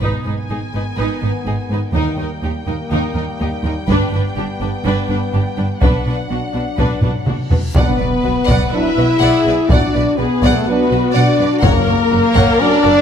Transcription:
0.01 G#1 G#2 D#3 B3 D#4 B4 G#5, taiko
0.25 G#1 G#2 D#4 B4
0.49 G#1 G#2 D#4 G#4
0.73 G#1 G#2 D#4 B4
0.96 G#1 G#2 D#4 B4
1.21 G#1 G#2 D#4 B4
1.45 G#1 G#2 D#4 G#4
1.69 G#1 G#2 D#4 B4
1.93 D#2 D#3 G3 A#3 D#4 A#4 G5
2.17 D#2 D#4 A#4
2.43 D#2 D#4 G4
2.67 D#2 D#4 A#4
2.91 D#2 D#4 A#4
3.14 D#2 D#4 A#4
3.39 D#2 D#4 G4
3.64 D#2 D#4 A#4
3.88 G1 G2 B3 D4 B4, taiko
4.12 G1 G2 D4 B4
4.36 G1 G2 D4 G4
4.61 G1 G2 D4 B4
4.85 G1 G2 D4 B4
5.09 G1 G2 D4 B4
5.33 G1 G2 D4 G4
5.57 G1 G2 D4 B4
5.82 B1 B2 F#3 D4 B4 F#5, taiko, reverse cymbal
6.06 B1 B2 D4 B4
6.30 B1 B2 D4 F#4
6.54 B1 B2 D4 B4
6.78 B1 B2 D4 B4, taiko
7.02 B1 B2 D4 B4, taiko low-mid
7.26 B1 B2 D4 F#4, taiko mid
7.50 B1 B2 D4 B4, taiko low
7.75 B1 B2 F#3 B3 D4 B4 D5 F#5, taiko, impact
7.97 B1 B2 B4 D5
8.23 B1 B2 F#4 B4
8.47 B1 B2 D5 F#5, taiko
8.71 F#3 D4 E4 B4 E5
8.97 B1 B2 F#4 B4
9.20 B1 B2 G#4 D5 F#5
9.45 B1 B2 B4 D5
9.69 B1 B2 F#3 D4 F#4 D5 F#5, taiko
9.93 B1 B2 B4 D5
10.17 B1 B2 B3 F#4 G#4 B4
10.42 B1 B2 D5 F#5, taiko
10.54 A3 A4
10.67 F#3 B3 D4 F#4 B4
10.91 B1 B2 F#4 B4
11.12 B1 B2 D4 D5 F#5
11.38 B1 B2 B4 D5
11.61 F#1 F#2 F#3 C#4 A#4 C#5 F#5, taiko
11.65 A#3
11.88 F#1 F#2 A#4 C#5
12.11 F#1 F#2 F#4 A#4
12.35 F#1 F#2 C#5 F#5, taiko
12.58 F#3 C#4 D4 D5
12.83 F#1 F#2 F#4 A#4

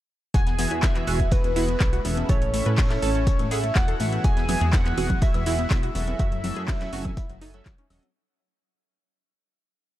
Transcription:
0.34 E1 G#3 E4 F#4 G#5, kick, closed hi-hat
0.46 B3, snare, closed hi-hat
0.59 E3 B3 F#4 G#4 E5, closed hi-hat, open hi-hat
0.71 E2 G#4, closed hi-hat
0.82 B3 E5, kick, snare, clap, closed hi-hat
0.95 E3 B3 F#4 G#4 E5, clap, closed hi-hat
1.07 E1 E3 B3 F#4 G#4 G#5, closed hi-hat, open hi-hat
1.20 B3, kick, closed hi-hat
1.31 F#4 B4, kick, closed hi-hat
1.44 E1 B3, closed hi-hat
1.55 E3 B3 E4 F#4 G#4 F#5, snare, closed hi-hat, open hi-hat
1.69 B3, closed hi-hat
1.80 B1 B3, kick, snare, clap, closed hi-hat
1.93 F#4, closed hi-hat
2.04 E1 A2 B3 C#4 E4 A4 E5, closed hi-hat, open hi-hat
2.17 B3, closed hi-hat
2.29 A1 A3 C#4 E4 A4 C#5, kick, closed hi-hat
2.42 A3, closed hi-hat
2.53 A2 A3 C#4 E4 A4 E5, closed hi-hat, open hi-hat
2.66 A2 B4, closed hi-hat
2.78 A3, kick, snare, clap, closed hi-hat, open hi-hat
2.90 A2 A3 C#4 E4 A4 E5, snare, clap, closed hi-hat
3.02 A1 A2 C#4 E4 A4 A5, closed hi-hat, open hi-hat
3.15 A3, closed hi-hat
3.27 A4, kick, closed hi-hat
3.39 A1 A3, closed hi-hat
3.51 A2 C#4 E4 G#4 A4 E5 F#5, closed hi-hat, open hi-hat
3.64 A3, closed hi-hat
3.75 E1 A3 F#5, kick, snare, clap, closed hi-hat
3.88 A4, closed hi-hat
3.99 A1 E3 A3 B3 F#4 G#4 E5, snare, closed hi-hat, open hi-hat
4.12 A3, closed hi-hat
4.24 E1 G#3 F#4 G#5, kick, closed hi-hat
4.37 B3, snare, closed hi-hat
4.48 E3 B3 F#4 G#4 E5, closed hi-hat, open hi-hat, high conga, low conga, high woodblock
4.61 E2 G#4, closed hi-hat
4.73 B3 F#5, kick, snare, clap, closed hi-hat
4.85 E3 B3 F#4 G#4 E5, clap, closed hi-hat
4.97 E1 E3 B3 F#4 G#4 G#5, closed hi-hat, open hi-hat, high conga, high woodblock
5.10 B3, kick, closed hi-hat, high conga, low conga
5.21 F#4 E5, kick, closed hi-hat
5.34 E1 B3, closed hi-hat, high woodblock
5.46 E3 B3 E4 F#4 G#4 F#5, snare, closed hi-hat, open hi-hat
5.59 B3, closed hi-hat
5.70 B1 B3, kick, snare, clap, closed hi-hat
5.83 F#4, closed hi-hat, high woodblock
5.95 E1 F#3 B3 C#4 F#4 A4 E5, closed hi-hat, open hi-hat
6.08 B3, closed hi-hat, high conga
6.19 F#1 A3 E4 F#4 E5, kick, closed hi-hat, high woodblock
6.32 F#3, closed hi-hat
6.44 F#3 C#4 F#4 A4 E5, closed hi-hat, open hi-hat, high conga, low conga
6.56 F#2 G#4, closed hi-hat
6.68 F#3, kick, snare, clap, closed hi-hat, open hi-hat, high woodblock
6.80 F#3 C#4 F#4 A4 E5, snare, clap, closed hi-hat
6.92 F#1 F#3 C#4 F#4 A4 G#5, closed hi-hat, open hi-hat, high conga
7.05 F#3, kick, closed hi-hat, high conga, low conga, high woodblock
7.17 E4, kick, closed hi-hat
7.29 F#1 F#3, closed hi-hat
7.41 F#3 C#4 D#4 F#4 A4 G#5, closed hi-hat, open hi-hat
7.54 F#3 C#4 F#4 A4 E5, closed hi-hat, high woodblock
7.65 F#1 F#3, kick, snare, clap, closed hi-hat
7.78 C#4, closed hi-hat
7.90 E1 F#3 C#4 F#4 A4 D#5, snare, closed hi-hat, open hi-hat, high woodblock
8.03 F#3, closed hi-hat, high conga

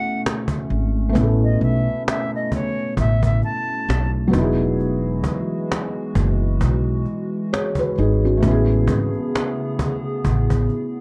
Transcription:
Already playing: B2 A3 B3 C#4 E4 G#4 A4 F#5
0.26 cajon slap
0.48 cajon bass
0.70 G#1, cajon slap
1.09 A3 B3
1.15 A1 C#4, cajon bass
1.20 E4 A4
1.43 D#5
1.61 B1 E5, cajon slap
2.08 E5, cajon slap
2.35 D#5
2.52 C#5, cajon bass
2.97 A1 E5, cajon bass
3.23 E5, cajon bass
3.42 A5, cajon slap
3.89 B1, cajon slap
4.28 F#3 B3
4.33 E1 E3 G#3 D#4 F#4, cajon bass
4.38 E4 G#4
4.80 cajon slap
5.24 cajon bass
5.72 cajon slap
6.15 F#1, cajon bass
6.61 B1, cajon bass
7.06 cajon slap
7.53 G#4 C#5, cajon slap
7.75 B4, cajon bass
7.79 F#4
7.98 G#1 D#4 G#4, cajon slap
8.25 C#4 F#4
8.37 A3 B3
8.42 A1 C#3 B3 C#4 G#4, cajon bass
8.48 E4 G#4
8.88 G#1, cajon bass
9.14 cajon slap
9.35 cajon slap
9.79 cajon bass
10.04 cajon slap
10.25 A1, cajon bass
10.50 cajon bass
10.69 cajon slap

